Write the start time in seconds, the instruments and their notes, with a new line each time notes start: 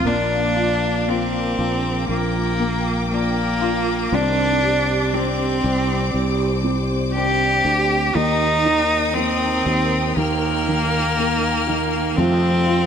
0.04 fretless electric bass A#1, nylon-string guitar A#2 F3 A#3 D4 F4, grand piano A#3, cello D4, string section A#4 F5 D6
0.55 nylon-string guitar D4 F4, grand piano F4
0.59 nylon-string guitar A#3
1.07 nylon-string guitar F3 A#3 D4 F4, grand piano A#3, cello C4
1.58 fretless electric bass A#1, nylon-string guitar A#3 D4 F4
2.08 fretless electric bass A#1, cello A#3, grand piano F4, string section G5
2.59 grand piano A#3
3.11 nylon-string guitar F3 A#3 D4 F4, cello A#3
3.61 nylon-string guitar A#3 D4 F4, grand piano F4
4.12 fretless electric bass C2, nylon-string guitar C3 D#3 C4 D4 G4, grand piano C4, cello D4, string section C5 D5
4.63 nylon-string guitar C4 D4 G4, grand piano G4
5.13 nylon-string guitar D#3 C4 D4 G4, grand piano C4, cello C4
5.64 fretless electric bass C2, nylon-string guitar C4 D4 G4
6.14 fretless electric bass C2, grand piano G4
6.63 grand piano C4
7.14 nylon-string guitar D#3 C4 D4 G4, cello G4
7.64 fretless electric bass D2, nylon-string guitar C4 D4 G4, grand piano G4
8.15 fretless electric bass D#2, grand piano D#3, nylon-string guitar D#3 A#3 D#4 G4, cello D#4, string section A#4 G5 D#6
8.65 grand piano D#3, nylon-string guitar A#3 D#4 G4
9.14 nylon-string guitar D#3 A#3 D#4, grand piano D#3, cello C4
9.18 nylon-string guitar G4
9.65 fretless electric bass D#2, nylon-string guitar A#3 D#4 G4
10.16 fretless electric bass D#2, grand piano D#3, cello A#3, string section F6
10.67 grand piano D#3
11.17 nylon-string guitar D#3 A#3 D#4 G4
11.67 grand piano D#3, nylon-string guitar A#3 D#4 G4
12.17 nylon-string guitar F2 C3 F3 A3 C4 F4, fretless electric bass F2, grand piano F3, cello C4, string section A4 F5 C6
12.67 grand piano F3, nylon-string guitar F3 A3 C4 F4